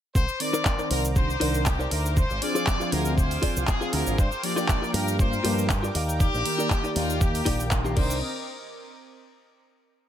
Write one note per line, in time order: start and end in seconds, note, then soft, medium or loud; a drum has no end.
0.15 0.24 C2 loud
0.15 0.40 C5 loud
0.15 4.15 C5 medium
0.15 2.15 A#5 medium
0.15 4.15 D6 medium
0.15 kick loud
0.15 cabasa medium
0.28 cabasa soft
0.39 1.13 D#3 medium
0.39 1.13 C4 medium
0.39 1.14 A#4 medium
0.39 0.91 D5 loud
0.39 1.13 D5 medium
0.39 open hi-hat loud
0.53 0.65 D#4 loud
0.53 0.65 A#4 loud
0.53 0.66 C5 loud
0.53 0.66 D5 loud
0.53 cabasa medium
0.65 kick loud
0.65 clap loud
0.65 cabasa medium
0.78 1.10 D#4 medium
0.78 1.10 A#4 medium
0.78 1.10 C5 medium
0.78 1.11 D5 loud
0.78 cabasa soft
0.91 1.35 C2 loud
0.91 1.02 A#4 loud
0.91 open hi-hat loud
1.05 cabasa medium
1.15 1.30 D#3 medium
1.15 1.30 C4 medium
1.15 1.30 D4 medium
1.15 1.31 G4 medium
1.15 1.63 C5 loud
1.15 kick loud
1.15 cabasa medium
1.30 cabasa soft
1.40 1.85 C2 medium
1.40 1.51 D#3 medium
1.40 1.52 C4 medium
1.40 1.52 D4 medium
1.40 1.60 D#4 loud
1.40 1.60 A#4 loud
1.40 1.52 A#4 loud
1.40 1.61 C5 loud
1.40 1.61 D5 loud
1.40 open hi-hat loud
1.54 1.67 D#3 medium
1.54 1.67 C4 medium
1.54 1.67 D4 medium
1.54 1.68 A#4 medium
1.54 cabasa medium
1.66 1.91 G4 loud
1.66 kick loud
1.66 clap loud
1.66 cabasa medium
1.79 2.16 D#4 medium
1.79 2.17 A#4 medium
1.79 2.17 C5 medium
1.79 2.17 D5 loud
1.79 cabasa soft
1.91 2.23 D2 medium
1.91 2.16 A#4 loud
1.91 open hi-hat loud
2.06 cabasa medium
2.17 2.42 C5 loud
2.17 5.91 F5 medium
2.17 4.17 G#5 medium
2.17 kick loud
2.17 cabasa medium
2.30 2.38 G#1 medium
2.30 cabasa soft
2.41 3.78 F3 medium
2.41 3.78 C4 medium
2.41 3.79 D4 medium
2.41 3.79 G#4 medium
2.41 2.92 D5 loud
2.41 open hi-hat loud
2.55 2.67 F4 loud
2.55 2.67 G#4 loud
2.55 2.67 C5 loud
2.55 2.68 D5 loud
2.55 cabasa medium
2.67 kick loud
2.67 clap loud
2.67 cabasa medium
2.80 3.11 F4 medium
2.80 3.12 G#4 medium
2.80 3.12 C5 medium
2.80 3.12 F5 loud
2.80 cabasa soft
2.92 3.36 D2 loud
2.92 3.17 A#4 loud
2.92 open hi-hat loud
3.05 cabasa medium
3.17 3.64 C5 loud
3.17 kick loud
3.17 cabasa medium
3.31 open hi-hat medium
3.31 cabasa soft
3.42 3.62 F4 loud
3.42 3.62 G#4 loud
3.42 3.62 C5 loud
3.42 3.63 D5 loud
3.42 kick medium
3.42 open hi-hat loud
3.56 3.64 C2 medium
3.56 cabasa medium
3.67 3.93 G#4 loud
3.67 kick loud
3.67 clap loud
3.67 cabasa medium
3.81 4.17 F3 medium
3.81 4.17 C4 medium
3.81 4.17 D4 medium
3.81 4.18 F4 medium
3.81 4.18 G#4 medium
3.81 4.17 G#4 medium
3.81 4.18 C5 medium
3.81 4.19 F5 medium
3.81 cabasa soft
3.93 4.02 D2 loud
3.93 4.18 A#4 medium
3.93 open hi-hat loud
4.07 4.14 G#1 loud
4.07 cabasa medium
4.18 4.27 G2 loud
4.18 7.93 A#4 medium
4.18 4.44 C5 loud
4.18 7.93 G5 medium
4.18 7.93 D6 medium
4.18 kick loud
4.18 cabasa medium
4.32 cabasa soft
4.43 5.16 F3 medium
4.43 5.16 A#3 medium
4.43 5.17 D4 medium
4.43 5.17 G4 medium
4.43 4.94 D5 loud
4.43 open hi-hat loud
4.56 4.68 F4 loud
4.56 4.69 G4 loud
4.56 4.69 A#4 loud
4.56 4.69 D5 loud
4.56 cabasa medium
4.68 kick loud
4.68 clap loud
4.68 cabasa medium
4.82 5.13 F4 medium
4.82 5.13 G4 medium
4.82 5.14 A#4 medium
4.82 5.14 D5 loud
4.82 cabasa soft
4.94 5.38 G2 loud
4.94 5.19 A#4 loud
4.94 open hi-hat loud
5.08 cabasa medium
5.19 5.33 F3 medium
5.19 5.34 A#3 medium
5.19 5.34 D4 medium
5.19 5.34 F4 loud
5.19 5.66 C5 loud
5.19 kick loud
5.19 cabasa medium
5.33 cabasa soft
5.44 5.88 G2 medium
5.44 5.55 F3 medium
5.44 5.55 A#3 medium
5.44 5.55 D4 medium
5.44 5.64 F4 loud
5.44 5.64 G4 loud
5.44 5.55 G4 loud
5.44 5.64 A#4 loud
5.44 5.64 D5 loud
5.44 open hi-hat loud
5.57 5.70 F3 medium
5.57 5.70 A#3 medium
5.57 5.70 D4 medium
5.57 5.70 G4 medium
5.57 cabasa medium
5.70 5.93 G4 medium
5.70 kick loud
5.70 clap loud
5.70 cabasa medium
5.83 5.94 F4 medium
5.83 5.94 G4 medium
5.83 5.94 A#4 medium
5.83 5.95 D5 medium
5.83 cabasa soft
5.94 6.26 D#2 loud
5.94 6.45 D#4 loud
5.94 6.45 G4 medium
5.94 6.46 A#4 medium
5.94 6.46 D5 loud
5.94 open hi-hat loud
6.09 cabasa medium
6.20 6.92 G4 loud
6.20 kick loud
6.20 cabasa medium
6.34 6.41 A#1 medium
6.34 cabasa soft
6.44 7.68 D#3 medium
6.44 7.69 A#3 medium
6.44 7.69 G4 medium
6.44 7.69 D5 medium
6.44 open hi-hat loud
6.58 6.70 D#4 loud
6.58 6.70 G4 loud
6.58 6.71 A#4 loud
6.58 6.71 D5 loud
6.58 cabasa medium
6.70 kick loud
6.70 clap loud
6.70 cabasa medium
6.84 7.15 D#4 medium
6.84 7.15 G4 medium
6.84 7.15 A#4 medium
6.84 7.16 D5 loud
6.84 cabasa soft
6.95 7.40 D#2 loud
6.95 7.21 F4 loud
6.95 open hi-hat loud
7.10 cabasa medium
7.20 7.71 G4 loud
7.20 kick loud
7.20 cabasa medium
7.35 open hi-hat medium
7.35 cabasa soft
7.45 7.96 A#1 loud
7.45 7.65 D#4 loud
7.45 7.66 G4 loud
7.45 7.66 A#4 loud
7.45 7.66 D5 loud
7.45 kick medium
7.45 open hi-hat loud
7.60 cabasa medium
7.71 7.80 D#3 medium
7.71 7.80 A#3 medium
7.71 7.80 D4 medium
7.71 7.81 G4 medium
7.71 kick loud
7.71 clap loud
7.71 cabasa medium
7.84 7.94 D#3 loud
7.84 7.96 A#3 medium
7.84 7.95 D#4 medium
7.84 7.96 G4 medium
7.84 7.97 G4 loud
7.84 7.95 A#4 medium
7.84 7.97 D5 medium
7.84 7.96 F5 loud
7.84 cabasa soft
7.95 8.20 C2 loud
7.95 8.15 D#3 medium
7.95 8.15 C4 medium
7.95 8.20 C4 medium
7.95 8.16 D4 medium
7.95 8.20 D#4 medium
7.95 8.20 A#4 medium
7.95 8.17 A#4 loud
7.95 8.20 C5 medium
7.95 8.20 D5 loud
7.95 8.20 D#5 medium
7.95 8.20 D6 medium
7.95 kick loud
7.95 crash medium
8.11 cabasa medium